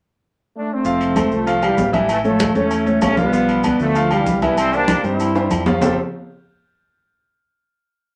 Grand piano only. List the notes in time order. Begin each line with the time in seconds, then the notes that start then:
0.85 F3 F4 F5
1.16 A3 A4 C5
1.46 F3 F4 F5
1.62 G3 G4 F5
1.93 E3 E4 E5
2.24 A3 A4 C#5
2.55 A3 A4 C#5
2.86 A3 A4 C#5
3.17 F3 F4 F5
3.33 F3 F4 F5
3.64 B3 B4 D5
3.95 F3 F4 F5
4.11 G3 G4 F5
4.42 E3 E4 E5
4.73 G3 G4 C5
5.04 G3 G4 C5
5.35 G3 G4 C5
5.66 F3 F4 F5
5.81 F3 C4 F4 G4 A4 C5